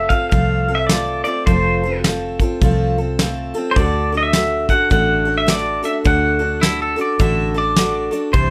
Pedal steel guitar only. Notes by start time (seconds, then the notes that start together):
0.09 F5
0.30 F5
0.75 E5
0.87 D5
1.24 D5
1.46 C5
3.71 C5
3.76 D5
4.17 D#5
4.23 E5
4.70 F#5
4.92 F#5
5.38 E5
5.50 D5
5.85 E5
6.07 F#5
8.33 C5